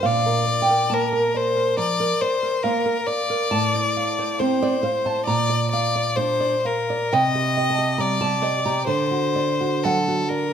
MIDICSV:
0, 0, Header, 1, 3, 480
1, 0, Start_track
1, 0, Tempo, 875912
1, 15, Time_signature, 4, 2, 24, 8
1, 3375, Tempo, 972447
1, 3855, Tempo, 870827
1, 4815, Tempo, 967742
1, 5295, Tempo, 899550
1, 5663, End_track
2, 0, Start_track
2, 0, Title_t, "Nylon-string guitar"
2, 0, Program_c, 0, 24
2, 16, Note_on_c, 0, 77, 94
2, 21, Note_on_c, 0, 46, 75
2, 142, Note_on_c, 0, 70, 57
2, 260, Note_off_c, 0, 70, 0
2, 262, Note_on_c, 0, 74, 58
2, 328, Note_off_c, 0, 77, 0
2, 338, Note_off_c, 0, 74, 0
2, 340, Note_on_c, 0, 79, 82
2, 382, Note_on_c, 0, 70, 65
2, 490, Note_off_c, 0, 79, 0
2, 492, Note_on_c, 0, 81, 94
2, 500, Note_on_c, 0, 58, 55
2, 572, Note_off_c, 0, 70, 0
2, 617, Note_on_c, 0, 70, 67
2, 690, Note_off_c, 0, 58, 0
2, 736, Note_on_c, 0, 74, 63
2, 807, Note_off_c, 0, 70, 0
2, 854, Note_on_c, 0, 70, 57
2, 926, Note_off_c, 0, 74, 0
2, 951, Note_off_c, 0, 81, 0
2, 955, Note_off_c, 0, 46, 0
2, 971, Note_on_c, 0, 82, 97
2, 977, Note_on_c, 0, 53, 58
2, 1045, Note_off_c, 0, 70, 0
2, 1096, Note_on_c, 0, 70, 60
2, 1165, Note_off_c, 0, 53, 0
2, 1215, Note_on_c, 0, 74, 66
2, 1284, Note_off_c, 0, 70, 0
2, 1331, Note_on_c, 0, 70, 61
2, 1402, Note_off_c, 0, 74, 0
2, 1427, Note_off_c, 0, 82, 0
2, 1446, Note_on_c, 0, 77, 94
2, 1451, Note_on_c, 0, 58, 58
2, 1519, Note_off_c, 0, 70, 0
2, 1565, Note_on_c, 0, 70, 59
2, 1639, Note_off_c, 0, 58, 0
2, 1684, Note_on_c, 0, 74, 64
2, 1756, Note_off_c, 0, 70, 0
2, 1808, Note_on_c, 0, 70, 61
2, 1877, Note_off_c, 0, 74, 0
2, 1906, Note_off_c, 0, 77, 0
2, 1924, Note_on_c, 0, 81, 105
2, 1927, Note_off_c, 0, 70, 0
2, 1928, Note_on_c, 0, 45, 73
2, 2055, Note_on_c, 0, 72, 62
2, 2175, Note_on_c, 0, 77, 61
2, 2246, Note_off_c, 0, 72, 0
2, 2295, Note_on_c, 0, 72, 60
2, 2365, Note_off_c, 0, 77, 0
2, 2390, Note_off_c, 0, 81, 0
2, 2404, Note_off_c, 0, 72, 0
2, 2410, Note_on_c, 0, 72, 98
2, 2418, Note_on_c, 0, 60, 60
2, 2530, Note_off_c, 0, 72, 0
2, 2535, Note_on_c, 0, 74, 96
2, 2537, Note_on_c, 0, 72, 64
2, 2605, Note_off_c, 0, 60, 0
2, 2640, Note_off_c, 0, 72, 0
2, 2646, Note_on_c, 0, 72, 98
2, 2649, Note_off_c, 0, 74, 0
2, 2652, Note_on_c, 0, 77, 60
2, 2767, Note_off_c, 0, 72, 0
2, 2770, Note_off_c, 0, 77, 0
2, 2772, Note_on_c, 0, 72, 57
2, 2772, Note_on_c, 0, 81, 87
2, 2867, Note_off_c, 0, 45, 0
2, 2888, Note_off_c, 0, 81, 0
2, 2890, Note_off_c, 0, 72, 0
2, 2890, Note_on_c, 0, 82, 98
2, 2894, Note_on_c, 0, 46, 75
2, 3011, Note_on_c, 0, 74, 58
2, 3140, Note_off_c, 0, 74, 0
2, 3142, Note_on_c, 0, 77, 64
2, 3263, Note_on_c, 0, 74, 61
2, 3332, Note_off_c, 0, 77, 0
2, 3357, Note_off_c, 0, 82, 0
2, 3380, Note_on_c, 0, 72, 105
2, 3385, Note_on_c, 0, 62, 61
2, 3449, Note_off_c, 0, 74, 0
2, 3496, Note_on_c, 0, 74, 62
2, 3569, Note_off_c, 0, 62, 0
2, 3616, Note_off_c, 0, 74, 0
2, 3618, Note_on_c, 0, 77, 62
2, 3739, Note_off_c, 0, 77, 0
2, 3740, Note_on_c, 0, 74, 65
2, 3839, Note_off_c, 0, 46, 0
2, 3839, Note_off_c, 0, 72, 0
2, 3851, Note_off_c, 0, 74, 0
2, 3853, Note_on_c, 0, 79, 101
2, 3855, Note_on_c, 0, 48, 75
2, 3976, Note_on_c, 0, 67, 60
2, 4098, Note_on_c, 0, 75, 61
2, 4166, Note_off_c, 0, 79, 0
2, 4168, Note_on_c, 0, 81, 91
2, 4170, Note_off_c, 0, 67, 0
2, 4214, Note_on_c, 0, 67, 62
2, 4287, Note_off_c, 0, 75, 0
2, 4322, Note_off_c, 0, 81, 0
2, 4324, Note_on_c, 0, 82, 95
2, 4328, Note_on_c, 0, 55, 59
2, 4403, Note_off_c, 0, 67, 0
2, 4447, Note_off_c, 0, 82, 0
2, 4449, Note_on_c, 0, 67, 67
2, 4449, Note_on_c, 0, 81, 95
2, 4520, Note_off_c, 0, 55, 0
2, 4566, Note_on_c, 0, 72, 97
2, 4569, Note_off_c, 0, 81, 0
2, 4569, Note_on_c, 0, 75, 63
2, 4642, Note_off_c, 0, 67, 0
2, 4690, Note_off_c, 0, 72, 0
2, 4695, Note_on_c, 0, 67, 59
2, 4695, Note_on_c, 0, 82, 95
2, 4764, Note_off_c, 0, 75, 0
2, 4793, Note_off_c, 0, 48, 0
2, 4814, Note_on_c, 0, 72, 102
2, 4815, Note_off_c, 0, 67, 0
2, 4816, Note_off_c, 0, 82, 0
2, 4817, Note_on_c, 0, 50, 80
2, 4933, Note_on_c, 0, 66, 58
2, 5055, Note_on_c, 0, 74, 65
2, 5129, Note_off_c, 0, 66, 0
2, 5179, Note_on_c, 0, 66, 67
2, 5249, Note_off_c, 0, 74, 0
2, 5276, Note_off_c, 0, 72, 0
2, 5300, Note_on_c, 0, 54, 61
2, 5301, Note_on_c, 0, 78, 100
2, 5372, Note_off_c, 0, 66, 0
2, 5424, Note_on_c, 0, 66, 61
2, 5494, Note_off_c, 0, 54, 0
2, 5542, Note_on_c, 0, 74, 62
2, 5611, Note_off_c, 0, 66, 0
2, 5663, Note_off_c, 0, 50, 0
2, 5663, Note_off_c, 0, 74, 0
2, 5663, Note_off_c, 0, 78, 0
2, 5663, End_track
3, 0, Start_track
3, 0, Title_t, "Violin"
3, 0, Program_c, 1, 40
3, 32, Note_on_c, 1, 74, 79
3, 515, Note_on_c, 1, 70, 69
3, 523, Note_off_c, 1, 74, 0
3, 747, Note_on_c, 1, 72, 74
3, 756, Note_off_c, 1, 70, 0
3, 977, Note_off_c, 1, 72, 0
3, 981, Note_on_c, 1, 74, 83
3, 1213, Note_on_c, 1, 72, 76
3, 1221, Note_off_c, 1, 74, 0
3, 1442, Note_on_c, 1, 70, 72
3, 1450, Note_off_c, 1, 72, 0
3, 1681, Note_on_c, 1, 74, 80
3, 1689, Note_off_c, 1, 70, 0
3, 2409, Note_on_c, 1, 72, 66
3, 2417, Note_off_c, 1, 74, 0
3, 2879, Note_off_c, 1, 72, 0
3, 2882, Note_on_c, 1, 74, 79
3, 3121, Note_off_c, 1, 74, 0
3, 3128, Note_on_c, 1, 74, 80
3, 3376, Note_on_c, 1, 72, 77
3, 3383, Note_off_c, 1, 74, 0
3, 3620, Note_on_c, 1, 70, 70
3, 3628, Note_off_c, 1, 72, 0
3, 3856, Note_on_c, 1, 75, 88
3, 3864, Note_off_c, 1, 70, 0
3, 4338, Note_on_c, 1, 74, 78
3, 4346, Note_off_c, 1, 75, 0
3, 4811, Note_off_c, 1, 74, 0
3, 4814, Note_on_c, 1, 72, 81
3, 5292, Note_on_c, 1, 69, 67
3, 5299, Note_off_c, 1, 72, 0
3, 5535, Note_on_c, 1, 70, 77
3, 5543, Note_off_c, 1, 69, 0
3, 5663, Note_off_c, 1, 70, 0
3, 5663, End_track
0, 0, End_of_file